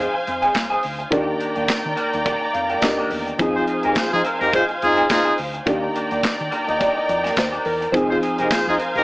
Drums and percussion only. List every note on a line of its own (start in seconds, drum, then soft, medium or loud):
0.27 closed hi-hat medium
0.42 closed hi-hat soft
0.54 kick medium
0.54 snare medium
0.54 clap medium
0.54 closed hi-hat loud
0.54 tambourine medium
0.83 open hi-hat medium
1.00 closed hi-hat soft
1.12 kick loud
1.12 closed hi-hat medium
1.40 closed hi-hat medium
1.56 closed hi-hat soft
1.68 kick loud
1.68 snare loud
1.68 clap medium
1.68 closed hi-hat medium
1.68 tambourine medium
1.97 closed hi-hat medium
2.13 closed hi-hat soft
2.26 kick loud
2.26 closed hi-hat medium
2.54 closed hi-hat medium
2.69 closed hi-hat soft
2.82 kick loud
2.82 snare loud
2.82 clap medium
2.82 closed hi-hat loud
2.82 tambourine medium
3.10 open hi-hat medium
3.27 closed hi-hat soft
3.39 kick loud
3.39 closed hi-hat medium
3.67 closed hi-hat medium
3.83 closed hi-hat soft
3.95 kick loud
3.95 snare loud
3.95 clap medium
3.95 closed hi-hat medium
3.95 tambourine loud
4.25 closed hi-hat medium
4.41 closed hi-hat soft
4.53 kick loud
4.53 closed hi-hat medium
4.69 closed hi-hat soft
4.82 closed hi-hat medium
4.97 closed hi-hat soft
5.09 kick loud
5.09 snare loud
5.09 clap medium
5.09 closed hi-hat medium
5.09 tambourine medium
5.38 open hi-hat medium
5.54 closed hi-hat soft
5.67 kick loud
5.67 closed hi-hat medium
5.96 closed hi-hat medium
6.11 closed hi-hat medium
6.23 kick loud
6.23 snare loud
6.23 clap medium
6.23 closed hi-hat medium
6.23 tambourine medium
6.40 closed hi-hat soft
6.52 closed hi-hat medium
6.69 closed hi-hat soft
6.81 kick medium
6.81 closed hi-hat medium
7.09 closed hi-hat medium
7.24 snare soft
7.24 closed hi-hat soft
7.37 kick loud
7.37 snare loud
7.37 clap medium
7.37 closed hi-hat medium
7.37 tambourine medium
7.53 closed hi-hat soft
7.65 open hi-hat medium
7.82 closed hi-hat soft
7.94 kick loud
7.94 closed hi-hat medium
8.23 closed hi-hat medium
8.38 closed hi-hat medium
8.51 kick loud
8.51 snare loud
8.51 clap medium
8.51 closed hi-hat medium
8.51 tambourine medium
8.80 closed hi-hat medium
8.96 closed hi-hat soft